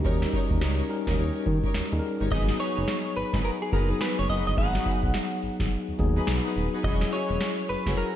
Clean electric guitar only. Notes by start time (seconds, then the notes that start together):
2.32 D#5
2.60 C#5
3.16 B4
3.45 A#4
3.62 G#4
3.73 A#4
3.90 G#4
4.01 B4
4.19 C#5
4.30 D#5
4.47 D#5
4.58 F#5
5.84 E5
6.84 D#5
7.13 C#5
7.69 B4
7.97 A#4